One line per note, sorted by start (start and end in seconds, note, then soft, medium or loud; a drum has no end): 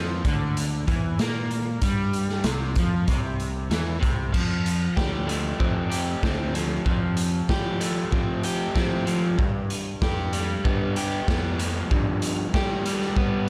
0.00 0.22 F2 medium
0.00 0.24 F3 loud
0.25 0.84 D2 medium
0.25 0.88 D3 loud
0.25 kick loud
0.25 closed hi-hat medium
0.57 closed hi-hat medium
0.88 1.17 E2 medium
0.88 1.18 E3 medium
0.88 kick medium
0.88 closed hi-hat medium
1.18 1.78 A#2 medium
1.18 1.82 A#3 medium
1.18 snare loud
1.18 closed hi-hat medium
1.51 closed hi-hat medium
1.82 2.41 G2 medium
1.82 2.45 G3 loud
1.82 kick loud
1.82 closed hi-hat medium
2.13 closed hi-hat medium
2.29 snare soft
2.44 2.74 C2 medium
2.44 2.76 C3 loud
2.44 snare loud
2.44 closed hi-hat medium
2.76 3.06 F2 medium
2.76 3.08 F3 loud
2.76 kick loud
2.76 closed hi-hat medium
3.08 3.67 C2 loud
3.08 3.71 C3 medium
3.08 kick loud
3.08 closed hi-hat medium
3.40 closed hi-hat medium
3.70 4.00 E2 medium
3.70 4.00 E3 medium
3.70 snare loud
3.70 closed hi-hat medium
4.00 4.32 C2 medium
4.00 4.32 C3 medium
4.00 kick loud
4.00 closed hi-hat medium
4.33 4.88 F2 loud
4.33 5.93 F3 medium
4.33 kick loud
4.33 crash loud
4.66 closed hi-hat medium
4.97 5.51 D2 loud
4.97 5.90 G4 medium
4.97 kick loud
4.97 snare loud
5.27 6.86 A3 medium
5.27 closed hi-hat medium
5.60 6.14 F2 loud
5.60 6.22 C4 medium
5.60 kick loud
5.90 7.49 G4 medium
5.90 closed hi-hat medium
6.23 6.77 D2 loud
6.23 7.81 C4 medium
6.23 kick loud
6.23 snare loud
6.55 6.86 F3 medium
6.55 snare soft
6.55 closed hi-hat medium
6.85 7.40 F2 loud
6.85 8.47 F3 medium
6.85 kick loud
7.17 closed hi-hat medium
7.49 8.03 F3 medium
7.49 8.44 G4 medium
7.49 kick loud
7.49 snare loud
7.80 9.38 A3 medium
7.80 closed hi-hat loud
8.12 8.66 F3 loud
8.12 8.73 C4 medium
8.12 kick loud
8.43 10.02 G4 medium
8.43 closed hi-hat medium
8.74 9.38 F3 medium
8.74 9.38 C4 medium
8.74 kick loud
8.74 snare loud
9.06 9.41 F3 medium
9.06 closed hi-hat medium
9.38 10.96 G2 medium
9.38 9.92 G2 loud
9.38 kick loud
9.70 closed hi-hat medium
10.02 10.56 F2 loud
10.02 10.97 G4 medium
10.02 kick loud
10.02 snare loud
10.33 12.85 G3 medium
10.33 closed hi-hat medium
10.64 11.19 G2 loud
10.64 11.27 B3 medium
10.64 kick loud
10.96 12.53 G4 medium
10.96 closed hi-hat medium
11.28 11.82 F2 loud
11.28 12.86 B3 medium
11.28 kick loud
11.28 snare loud
11.59 13.17 F3 medium
11.59 closed hi-hat medium
11.91 12.45 G2 loud
11.91 13.49 G2 medium
11.91 kick loud
12.22 closed hi-hat loud
12.54 13.08 G3 medium
12.54 13.48 G4 medium
12.54 kick loud
12.54 snare loud
12.86 13.49 G3 medium
12.86 closed hi-hat loud
13.01 snare soft
13.16 13.49 G3 loud
13.16 13.49 B3 medium
13.16 kick loud